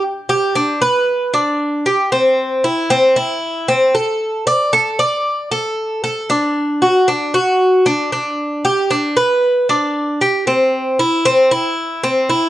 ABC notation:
X:1
M:4/4
L:1/8
Q:1/4=115
K:G
V:1 name="Cuban tres"
z G D B2 D2 G | C2 E C E2 C A- | A d A d2 A2 A | D2 F D F2 D D- |
D G D B2 D2 G | C2 E C E2 C E |]